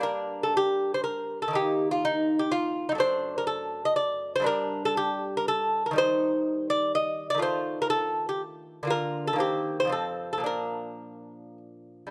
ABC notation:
X:1
M:3/4
L:1/16
Q:1/4=122
K:Gm
V:1 name="Lute"
B3 A G3 c B3 A | G3 F E3 G F3 E | c3 B A3 e d3 c | B3 A G3 B A3 B |
[K:Bb] c6 d2 e3 d | c3 B A3 G z4 | B3 A G3 c A3 A | B8 z4 |]
V:2 name="Lute"
[G,,B,D]12 | [E,B,E]12 | [^F,,A,D]12 | [G,,G,D]12 |
[K:Bb] [E,G,E]12 | [E,A,F]12 | [D,B,F]4 [E,B,C]4 [F,,F,C]4 | [B,,F,D]12 |]